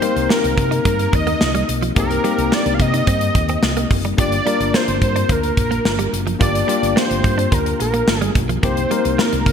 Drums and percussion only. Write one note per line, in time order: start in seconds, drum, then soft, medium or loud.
0.02 closed hi-hat medium
0.17 closed hi-hat soft
0.30 snare loud
0.44 closed hi-hat soft
0.58 kick medium
0.58 closed hi-hat medium
0.72 closed hi-hat medium
0.85 kick medium
0.85 closed hi-hat medium
0.99 closed hi-hat medium
1.13 kick medium
1.13 closed hi-hat medium
1.27 closed hi-hat soft
1.41 snare loud
1.55 closed hi-hat medium
1.69 closed hi-hat medium
1.83 closed hi-hat soft
1.96 kick medium
1.96 closed hi-hat medium
2.11 closed hi-hat medium
2.25 closed hi-hat medium
2.39 closed hi-hat soft
2.52 snare loud
2.66 closed hi-hat soft
2.80 kick medium
2.80 closed hi-hat medium
2.94 closed hi-hat medium
3.07 kick medium
3.07 closed hi-hat medium
3.21 closed hi-hat medium
3.35 kick medium
3.35 closed hi-hat medium
3.49 closed hi-hat soft
3.63 snare loud
3.77 closed hi-hat soft
3.91 kick medium
3.91 open hi-hat medium
4.04 closed hi-hat soft
4.18 kick loud
4.18 closed hi-hat medium
4.32 closed hi-hat medium
4.47 closed hi-hat medium
4.61 closed hi-hat soft
4.74 snare loud
4.88 closed hi-hat soft
5.02 kick medium
5.02 closed hi-hat medium
5.16 closed hi-hat medium
5.29 kick medium
5.29 closed hi-hat medium
5.43 closed hi-hat medium
5.57 kick medium
5.57 closed hi-hat medium
5.72 closed hi-hat soft
5.85 snare loud
5.99 closed hi-hat soft
6.14 closed hi-hat medium
6.27 closed hi-hat soft
6.41 kick loud
6.41 closed hi-hat medium
6.55 closed hi-hat medium
6.69 closed hi-hat medium
6.83 closed hi-hat soft
6.97 snare loud
7.11 closed hi-hat medium
7.24 kick medium
7.24 closed hi-hat medium
7.39 closed hi-hat medium
7.52 kick medium
7.52 closed hi-hat medium
7.66 closed hi-hat medium
7.80 closed hi-hat medium
7.94 closed hi-hat soft
8.08 snare loud
8.22 closed hi-hat soft
8.35 kick medium
8.35 closed hi-hat medium
8.49 closed hi-hat soft
8.63 kick loud
8.63 closed hi-hat medium
8.77 closed hi-hat medium
8.91 closed hi-hat medium
9.05 closed hi-hat medium
9.19 snare loud
9.33 closed hi-hat medium
9.46 kick medium
9.46 closed hi-hat medium